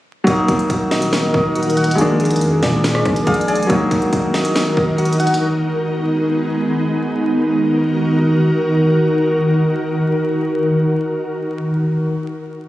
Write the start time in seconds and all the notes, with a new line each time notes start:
0.24 D#1 D#3 F#3 A#3 D#4 F#4 A#4, kick, closed hi-hat
0.30 D#4
0.48 D#2 F#4, kick, closed hi-hat
0.59 closed hi-hat
0.70 D#1, kick, closed hi-hat
0.91 D#5, snare, closed hi-hat
1.02 closed hi-hat
1.13 A#3, snare, closed hi-hat
1.34 D#1, kick
1.56 F#4, closed hi-hat
1.63 closed hi-hat
1.70 closed hi-hat
1.77 F#5, closed hi-hat
1.84 closed hi-hat
1.91 closed hi-hat
1.95 A#1 G#3 A#3 D4, closed hi-hat
2.01 D4
2.20 G#4, closed hi-hat
2.25 closed hi-hat
2.31 closed hi-hat
2.36 closed hi-hat
2.41 F2, closed hi-hat
2.63 A#2 D5, kick, snare, closed hi-hat
2.84 A#3, snare, closed hi-hat
2.95 cross-stick
3.05 A#1, kick, cross-stick, closed hi-hat
3.16 closed hi-hat
3.27 A#1 G#4 F5, kick, closed hi-hat
3.34 closed hi-hat
3.41 closed hi-hat
3.48 D5 G#5, closed hi-hat
3.56 closed hi-hat
3.63 closed hi-hat
3.67 D#3 F#3 A#3 D#4 F#4 A#4, kick, closed hi-hat
3.72 D#4
3.91 F#4, kick, closed hi-hat
4.02 closed hi-hat
4.13 kick, closed hi-hat
4.34 D#5, snare, closed hi-hat
4.45 closed hi-hat
4.55 A#3, snare, closed hi-hat
4.77 kick
4.98 F#4, closed hi-hat
5.05 closed hi-hat
5.13 closed hi-hat
5.20 F#5, closed hi-hat
5.27 closed hi-hat
5.34 closed hi-hat
5.41 G#3 B3
7.12 D#3 D#4 F#4 A#4